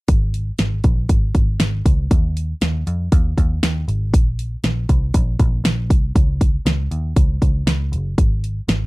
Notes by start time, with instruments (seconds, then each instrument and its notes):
0.08 picked electric bass G#1, kick, closed hi-hat
0.34 closed hi-hat
0.59 picked electric bass G#1, snare, closed hi-hat
0.84 picked electric bass A#1, kick, closed hi-hat
1.09 picked electric bass G#1, kick, closed hi-hat
1.35 picked electric bass G#1, kick, closed hi-hat
1.60 picked electric bass G#1, snare, closed hi-hat
1.85 picked electric bass C#2, kick, closed hi-hat
2.11 picked electric bass D#2, kick, closed hi-hat
2.37 closed hi-hat
2.61 picked electric bass D#2, snare, closed hi-hat
2.87 picked electric bass F2, closed hi-hat
3.12 picked electric bass D#2, kick, closed hi-hat
3.38 picked electric bass D#2, kick, closed hi-hat
3.63 picked electric bass D#2, snare, closed hi-hat
3.88 picked electric bass G#1, closed hi-hat
4.14 picked electric bass A#1, kick, closed hi-hat
4.39 closed hi-hat
4.64 picked electric bass A#1, snare, closed hi-hat
4.89 picked electric bass C2, kick, closed hi-hat
5.14 picked electric bass A#1, kick, closed hi-hat
5.39 picked electric bass A#1, kick, closed hi-hat
5.64 picked electric bass A#1, snare, closed hi-hat
5.90 picked electric bass C2, kick, closed hi-hat
6.15 picked electric bass C#2, kick, closed hi-hat
6.41 kick, closed hi-hat
6.66 picked electric bass C#2, snare, closed hi-hat
6.91 picked electric bass D#2, closed hi-hat
7.16 picked electric bass C#2, kick, closed hi-hat
7.42 picked electric bass C#2, kick, closed hi-hat
7.67 picked electric bass C#2, snare, closed hi-hat
7.92 picked electric bass F#1, closed hi-hat
8.18 picked electric bass G#1, kick, closed hi-hat
8.44 closed hi-hat
8.68 picked electric bass G#1, snare, closed hi-hat